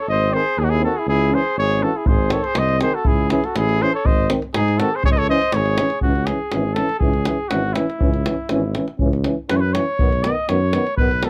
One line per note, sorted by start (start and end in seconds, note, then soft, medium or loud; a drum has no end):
0.01 0.09 A4 medium
0.08 0.35 G#1 loud
0.08 0.39 C5 medium
0.08 0.35 D#5 loud
0.29 0.43 D#3 medium
0.29 0.40 C4 medium
0.29 0.60 C5 loud
0.37 0.64 G#4 medium
0.57 0.84 D#2 loud
0.57 0.65 G#4 medium
0.63 0.68 D#4 medium
0.63 0.71 F#4 medium
0.68 0.76 D#4 medium
0.68 0.81 G#4 loud
0.74 0.84 E4 medium
0.80 0.93 D#3 medium
0.80 0.90 C4 medium
0.84 1.00 F#4 medium
0.84 0.98 A4 medium
0.96 1.08 E4 medium
0.96 1.07 G#4 medium
1.07 1.34 C#2 loud
1.07 1.36 E4 medium
1.07 1.36 G#4 loud
1.30 1.42 E3 medium
1.30 1.40 C#4 medium
1.30 1.57 C5 medium
1.34 1.58 G#4 medium
1.57 1.84 G#1 loud
1.57 1.87 G#4 medium
1.57 1.84 C#5 loud
1.80 1.91 E3 medium
1.80 1.90 C#4 medium
1.80 1.98 A4 medium
1.86 1.98 F#4 medium
1.96 2.11 E4 medium
1.96 2.08 G#4 medium
2.06 2.34 G#1 loud
2.06 2.34 G#4 medium
2.06 2.34 C5 medium
2.06 davul low loud
2.29 2.41 D#3 medium
2.29 2.39 C4 medium
2.29 2.49 A4 medium
2.29 2.45 C#5 medium
2.29 davul high medium
2.43 2.59 C5 medium
2.43 davul high soft
2.47 2.59 G#4 medium
2.55 2.83 C2 loud
2.55 2.79 C5 medium
2.55 2.81 D#5 loud
2.55 davul high medium
2.69 davul high soft
2.79 2.92 D#3 medium
2.79 2.90 C4 medium
2.79 2.96 G#4 medium
2.79 2.96 C5 medium
2.79 davul high medium
2.94 3.07 F#4 medium
2.94 3.08 A4 medium
3.05 3.33 C#2 medium
3.05 3.30 E4 medium
3.05 3.31 G#4 medium
3.05 davul low medium
3.30 3.41 E3 medium
3.30 3.41 C#4 medium
3.30 3.46 E4 medium
3.30 3.46 G#4 medium
3.30 davul high medium
3.44 3.58 F#4 medium
3.44 3.59 A4 medium
3.44 davul high soft
3.56 3.83 A1 loud
3.56 3.83 E4 medium
3.56 3.84 G#4 loud
3.56 davul high medium
3.69 davul high soft
3.80 3.91 E3 medium
3.80 3.90 C#4 medium
3.80 3.92 G#4 medium
3.80 3.94 C5 loud
3.93 4.07 A4 medium
3.93 4.07 C#5 medium
4.05 4.32 G#1 medium
4.05 4.30 C5 medium
4.05 4.30 D#5 medium
4.05 davul low medium
4.29 4.40 D#3 medium
4.29 4.39 C4 medium
4.29 davul high medium
4.42 davul high soft
4.54 4.82 G#2 medium
4.54 4.81 D#4 medium
4.54 4.80 G#4 medium
4.54 davul high medium
4.68 davul high soft
4.79 4.90 D#3 medium
4.79 4.89 C4 medium
4.79 4.94 F#4 medium
4.79 4.97 A4 loud
4.79 davul high medium
4.92 5.04 G#4 medium
4.92 5.05 C5 medium
5.04 5.31 C#2 medium
5.04 5.11 G#4 medium
5.04 5.13 C#5 loud
5.04 davul low medium
5.10 5.18 C5 medium
5.10 5.20 D#5 medium
5.17 5.28 A4 medium
5.17 5.29 C#5 loud
5.17 davul high soft
5.28 5.38 E3 medium
5.28 5.39 C#4 medium
5.28 5.58 C5 medium
5.28 5.55 D#5 loud
5.42 davul high soft
5.52 5.81 G#1 loud
5.52 6.01 C#5 medium
5.52 davul high medium
5.57 6.05 G#4 medium
5.66 davul high soft
5.78 5.88 E3 soft
5.78 5.88 C#4 medium
5.78 davul high medium
5.90 davul high soft
6.01 6.30 C#2 medium
6.01 6.13 E3 soft
6.01 6.13 C#4 medium
6.01 6.27 F#4 medium
6.01 davul low medium
6.15 davul high soft
6.26 6.38 E3 soft
6.26 6.38 C#4 medium
6.26 6.75 G#4 medium
6.26 davul high medium
6.52 6.80 G#1 medium
6.52 6.64 E3 medium
6.52 6.62 C#4 medium
6.52 davul high medium
6.74 6.87 C#4 medium
6.74 6.98 A4 loud
6.74 davul high medium
6.78 6.88 E3 medium
6.89 davul high soft
6.99 7.29 C#2 medium
6.99 7.11 E3 medium
6.99 7.50 G#4 medium
6.99 davul low medium
7.03 7.13 C#4 medium
7.14 davul high soft
7.25 7.37 E3 medium
7.25 7.37 C#4 medium
7.25 davul high medium
7.48 7.78 G#1 medium
7.48 7.61 C#4 medium
7.48 7.74 F#4 medium
7.48 davul high medium
7.53 7.62 E3 medium
7.73 7.86 E3 medium
7.73 7.86 C#4 medium
7.73 8.99 E4 medium
7.73 davul high medium
7.90 davul high soft
8.00 8.29 C#2 medium
8.00 8.10 E3 medium
8.00 8.11 C#4 medium
8.00 davul low loud
8.14 davul high soft
8.25 8.35 E3 medium
8.25 8.36 C#4 medium
8.25 davul high medium
8.49 8.78 G#1 medium
8.49 8.61 E3 medium
8.49 8.61 C#4 medium
8.49 davul high medium
8.75 8.86 E3 medium
8.75 8.86 C#4 medium
8.75 davul high medium
8.88 davul high soft
8.99 9.28 C#2 medium
8.99 9.11 E3 medium
8.99 9.09 C#4 medium
8.99 davul low medium
9.13 davul high soft
9.24 9.36 E3 medium
9.24 9.35 C#4 medium
9.24 davul high medium
9.50 9.78 F#2 medium
9.50 9.60 E3 medium
9.50 9.60 C#4 medium
9.50 9.58 B4 medium
9.50 davul high medium
9.56 9.75 B4 medium
9.56 9.62 C#5 medium
9.73 9.84 E3 medium
9.73 9.85 C#4 medium
9.73 10.25 C#5 loud
9.73 davul high medium
9.99 10.28 B1 medium
9.99 10.10 D#3 medium
9.99 10.09 B3 medium
9.99 davul low medium
10.13 davul high soft
10.23 10.34 D#3 medium
10.23 10.35 B3 medium
10.23 10.50 D#5 medium
10.23 davul high medium
10.49 10.77 F#2 loud
10.49 10.59 D#3 medium
10.49 10.59 B3 medium
10.49 10.96 C#5 loud
10.49 davul high medium
10.73 10.83 D#3 medium
10.73 10.85 B3 medium
10.73 davul high medium
10.87 davul high soft
10.97 11.26 B1 medium
10.97 11.09 D#3 medium
10.97 11.10 B3 medium
10.97 11.26 B4 medium
10.97 davul low medium
11.11 davul high soft
11.23 11.30 D#3 medium
11.23 11.30 B3 medium
11.23 11.30 A4 medium
11.23 davul high medium